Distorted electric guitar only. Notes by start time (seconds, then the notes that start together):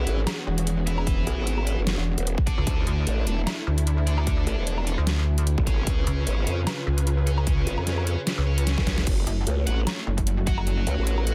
0.07 E4 B4 E5
0.87 E4 B4 E5
1.67 E4 B4 E5
2.47 D4 A4 D5
3.27 D4 A4 D5
4.07 D4 A4 D5
4.87 D4 A4 D5
5.67 C#4 G#4 C#5
6.47 C#4 G#4 C#5
7.27 C#4 G#4 C#5
8.07 C#4 G#4 C#5
8.47 C#4 G#4 C#5
8.87 C#4 G#4 C#5
9.67 F#4 C#5 F#5
10.47 F#4 C#5 F#5
11.27 F#4 C#5 F#5